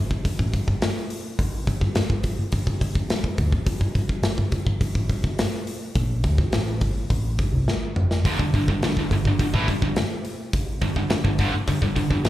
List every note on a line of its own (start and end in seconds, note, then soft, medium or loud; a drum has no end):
0.11 0.24 G1 medium
0.11 kick medium
0.25 0.38 G1 medium
0.25 kick medium
0.25 open hi-hat medium
0.39 0.52 A1 medium
0.39 kick medium
0.53 0.66 G1 medium
0.53 kick medium
0.53 open hi-hat soft
0.68 0.81 G1 medium
0.68 kick medium
0.82 snare loud
0.82 open hi-hat medium
1.10 open hi-hat medium
1.39 kick loud
1.39 open hi-hat medium
1.67 1.80 G1 medium
1.67 kick medium
1.67 open hi-hat soft
1.81 1.94 G1 medium
1.81 kick medium
1.95 2.09 G1 medium
1.95 snare loud
1.95 open hi-hat medium
2.10 2.23 G1 medium
2.10 kick medium
2.23 2.37 G1 medium
2.23 kick medium
2.23 open hi-hat medium
2.39 muted picked electric bass stroke soft
2.52 2.66 G1 medium
2.52 kick loud
2.52 open hi-hat medium
2.67 2.80 G1 medium
2.67 kick medium
2.81 2.95 G1 medium
2.81 kick medium
2.81 open hi-hat medium
2.95 3.09 G1 medium
2.95 kick medium
3.10 3.23 G1 medium
3.10 snare loud
3.10 open hi-hat medium
3.24 3.37 G1 medium
3.24 kick medium
3.38 3.52 D2 medium
3.38 kick medium
3.38 open hi-hat soft
3.52 3.66 G1 medium
3.52 kick medium
3.66 3.80 G1 medium
3.66 kick medium
3.66 open hi-hat medium
3.80 3.94 G1 medium
3.80 kick medium
3.95 4.09 G1 medium
3.95 kick medium
3.95 open hi-hat soft
4.09 4.22 G1 medium
4.09 kick medium
4.23 4.37 G1 medium
4.23 snare loud
4.23 open hi-hat medium
4.38 4.51 G1 medium
4.38 kick medium
4.52 4.66 G1 medium
4.52 kick medium
4.52 open hi-hat soft
4.66 4.80 G1 medium
4.66 kick medium
4.81 4.94 G1 medium
4.81 kick medium
4.81 open hi-hat medium
4.95 5.09 A1 medium
4.95 kick medium
5.09 5.23 G1 medium
5.09 kick medium
5.09 open hi-hat soft
5.24 5.37 G1 medium
5.24 kick medium
5.39 snare loud
5.39 open hi-hat medium
5.67 open hi-hat soft
5.95 6.22 A#1 medium
5.95 kick loud
5.95 open hi-hat medium
6.24 6.37 D2 loud
6.24 kick medium
6.24 open hi-hat soft
6.38 6.52 G1 medium
6.38 kick medium
6.53 6.79 A1 medium
6.53 snare loud
6.53 open hi-hat medium
6.81 7.08 G1 medium
6.81 kick loud
6.81 open hi-hat medium
7.10 7.37 A1 medium
7.10 kick loud
7.10 open hi-hat medium
7.38 7.52 G1 medium
7.38 kick loud
7.38 open hi-hat medium
7.53 7.66 C2 medium
7.67 8.20 G1 medium
7.67 snare medium
7.96 mid tom medium
8.11 snare medium
8.25 8.38 G1 loud
8.25 8.39 G2 medium
8.25 8.39 D3 medium
8.25 kick loud
8.25 open hi-hat medium
8.39 8.52 G1 medium
8.39 8.54 G2 medium
8.39 8.54 D3 medium
8.39 kick medium
8.54 8.67 G1 medium
8.54 8.68 G2 medium
8.54 8.68 D3 medium
8.54 kick medium
8.54 open hi-hat soft
8.68 8.81 G1 medium
8.68 8.82 G2 medium
8.68 8.83 D3 medium
8.68 kick medium
8.81 8.95 G1 medium
8.81 8.97 G2 medium
8.81 8.97 D3 medium
8.81 snare loud
8.81 open hi-hat medium
8.97 9.10 G1 medium
8.97 9.12 G2 medium
8.97 9.12 D3 medium
8.97 kick medium
9.11 9.24 G1 medium
9.11 9.26 G2 medium
9.11 9.26 D3 medium
9.11 kick medium
9.11 open hi-hat soft
9.25 9.38 G1 medium
9.25 9.39 G2 medium
9.25 9.40 D3 medium
9.25 kick medium
9.39 9.52 G1 medium
9.39 9.54 G2 medium
9.39 9.54 D3 medium
9.39 kick medium
9.39 open hi-hat medium
9.53 9.67 A1 medium
9.53 9.67 A2 medium
9.53 9.67 E3 loud
9.53 kick medium
9.68 9.81 G1 medium
9.68 9.81 G2 medium
9.68 9.81 D3 medium
9.68 kick medium
9.68 open hi-hat soft
9.82 9.95 G1 medium
9.82 9.96 G2 medium
9.82 9.96 D3 medium
9.82 kick medium
9.96 snare loud
9.96 open hi-hat medium
10.25 open hi-hat soft
10.53 kick loud
10.53 open hi-hat medium
10.81 10.95 G1 medium
10.81 10.95 G2 medium
10.81 10.96 D3 medium
10.81 kick medium
10.81 open hi-hat soft
10.96 11.09 G1 medium
10.96 11.09 G2 medium
10.96 11.09 D3 medium
10.96 kick medium
11.10 11.24 G1 medium
11.10 11.23 G2 medium
11.10 11.24 D3 medium
11.10 snare loud
11.10 open hi-hat medium
11.24 11.38 G1 medium
11.24 11.38 G2 medium
11.24 11.38 D3 medium
11.24 kick loud
11.39 11.52 G1 loud
11.39 11.52 G2 medium
11.39 11.53 D3 medium
11.39 kick medium
11.39 open hi-hat soft
11.53 muted distorted electric guitar stroke soft
11.53 muted picked electric bass stroke soft
11.67 11.81 G1 medium
11.67 11.80 G2 medium
11.67 11.81 D3 medium
11.67 kick medium
11.67 open hi-hat medium
11.82 11.95 G1 medium
11.82 11.94 G2 medium
11.82 11.95 D3 medium
11.82 kick medium
11.95 12.09 G1 medium
11.95 12.09 G2 medium
11.95 12.10 D3 medium
11.95 kick medium
11.95 open hi-hat medium
12.10 12.24 G1 medium
12.10 12.24 G2 medium
12.10 12.24 D3 medium
12.10 kick medium
12.25 12.29 G1 medium
12.25 12.29 G2 medium
12.25 12.29 D3 medium
12.25 snare loud
12.25 open hi-hat medium